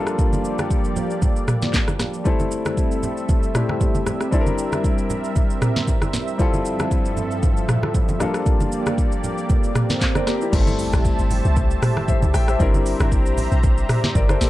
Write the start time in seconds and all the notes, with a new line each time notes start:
Already playing: F3 G3 A#3 D4 F4 G4 A4 D5
0.07 cross-stick, shaker
0.19 kick, shaker
0.33 high conga, shaker
0.45 shaker
0.59 cross-stick, high conga, shaker
0.70 kick, shaker
0.85 shaker
0.96 low conga, shaker
1.10 shaker
1.22 kick, low conga, shaker
1.36 shaker
1.48 cross-stick, mid tom, shaker
1.62 snare, high conga, shaker
1.74 kick, snare, clap, high conga, low conga, shaker
1.88 cross-stick, high conga, shaker
1.99 cross-stick, snare, low conga, shaker
2.14 shaker
2.24 G3 A3 C4 E4 A4 E5, kick, shaker
2.40 high conga, shaker
2.51 shaker
2.65 cross-stick, high conga, shaker
2.77 kick, shaker
2.91 shaker
3.03 low conga, shaker
3.17 shaker
3.29 kick, low conga, shaker
3.43 shaker
3.54 G3 A3 C4 E4 G4, cross-stick, mid tom, shaker
3.69 cross-stick, high conga
3.81 kick, low conga, shaker
3.95 high conga, shaker
4.06 cross-stick, low conga, shaker
4.21 cross-stick, shaker
4.31 G3 C4 D4 E4 A4 A#4, kick, shaker
4.41 A#4
4.47 high conga, shaker
4.58 shaker
4.72 cross-stick, high conga, shaker
4.84 kick, shaker
4.98 shaker
5.10 low conga, shaker
5.24 shaker
5.36 kick, low conga, shaker
5.50 shaker
5.62 cross-stick, mid tom, shaker
5.76 snare, high conga
5.88 kick, low conga, shaker
6.02 cross-stick, high conga, shaker
6.13 snare, low conga, shaker
6.28 shaker
6.38 G2 F3 G3 C4 E4 F4 A4, kick, swell, shaker
6.54 high conga, shaker
6.65 shaker
6.79 cross-stick, high conga, shaker
6.91 kick, shaker
7.05 shaker
7.17 low conga, shaker
7.31 shaker
7.43 kick, low conga, shaker
7.57 shaker
7.69 cross-stick, mid tom, shaker
7.83 cross-stick, high conga
7.94 kick, low conga, shaker
8.09 high conga, shaker
8.19 G3 A#3 D4 F4 G4 A4 D5, cross-stick, low conga, shaker
8.34 cross-stick, shaker
8.46 kick, shaker
8.60 high conga, shaker
8.72 shaker
8.86 cross-stick, high conga, shaker
8.98 kick, shaker
9.12 shaker
9.24 low conga, shaker
9.38 shaker
9.49 kick, low conga, shaker
9.64 shaker
9.75 cross-stick, mid tom, shaker
9.90 snare, high conga, shaker
10.01 kick, snare, clap, low conga, shaker
10.15 A#4 D5, cross-stick, high conga, shaker
10.27 G4 A#4, cross-stick, snare, shaker
10.41 E4 G4, shaker
10.52 G1 G3 A3 C4 E4 G4 C5 E5 A5, kick, crash, impact, shaker
10.61 A4
10.67 high conga, shaker
10.79 open hi-hat, shaker
10.93 A1, cross-stick, high conga, shaker
11.05 kick, shaker
11.19 G1, shaker
11.31 open hi-hat, low conga, shaker
11.45 C2, shaker
11.56 kick, low conga, shaker
11.71 shaker
11.82 cross-stick, mid tom, open hi-hat, shaker
11.97 cross-stick, high conga
12.08 C5 E5, kick, low conga, shaker
12.22 C2, high conga, shaker
12.34 A1 E5 G5, cross-stick, open hi-hat, shaker
12.48 C5 E5, cross-stick, shaker
12.59 G1 G3 C4 D4 E4 A#4 C5 A#5, kick, shaker
12.74 high conga, shaker
12.86 open hi-hat, shaker
13.00 G1, cross-stick, high conga, shaker
13.12 kick, shaker
13.26 A#1, shaker
13.38 open hi-hat, low conga, shaker
13.52 A#1, shaker
13.63 kick, low conga, shaker
13.78 shaker
13.89 cross-stick, mid tom, open hi-hat, shaker
14.04 snare, high conga
14.15 G1 A#4 D5, kick, low conga, shaker
14.29 A4 C5, cross-stick, high conga, shaker
14.41 G1 G4 A#4, snare, open hi-hat, shaker